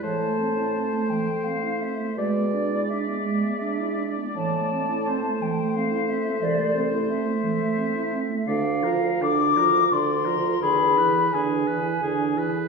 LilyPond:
<<
  \new Staff \with { instrumentName = "Flute" } { \time 3/4 \key a \minor \tempo 4 = 85 a''4. g''8 f''8 e''8 | d''4 e''2 | a''4. g''8 f''8 e''8 | d''8 r8 e''2 |
f''4 d'''4 c'''4 | b''4 gis''2 | }
  \new Staff \with { instrumentName = "Oboe" } { \time 3/4 \key a \minor c''2. | d''2.~ | d''4 c''2~ | c''2. |
d''8 bes'8 d''8 bes'8 d''8 bes'8 | gis'8 b'8 gis'8 b'8 gis'8 b'8 | }
  \new Staff \with { instrumentName = "Clarinet" } { \time 3/4 \key a \minor e16 a16 c'16 e'16 c'16 a16 e16 a16 c'16 e'16 c'16 a16 | gis16 b16 d'16 e'16 d'16 b16 gis16 b16 d'16 e'16 d'16 b16 | e16 a16 c'16 e'16 c'16 a16 e16 a16 c'16 e'16 c'16 a16 | e16 a16 c'16 e'16 c'16 a16 e16 a16 c'16 e'16 c'16 a16 |
d'8 f'8 d'8 f'8 d'8 f'8 | d'8 e'8 d'8 e'8 d'8 e'8 | }
  \new Staff \with { instrumentName = "French horn" } { \clef bass \time 3/4 \key a \minor a2. | gis2. | a2.~ | a2. |
d8 f8 d8 f8 d8 f8 | d8 e8 d8 e8 d8 e8 | }
  \new Staff \with { instrumentName = "Bassoon" } { \clef bass \time 3/4 \key a \minor a,4 r2 | b,4 r2 | a,4 r2 | c,4 r2 |
d,4 d,4 d,4 | e,4 e,4 e,4 | }
>>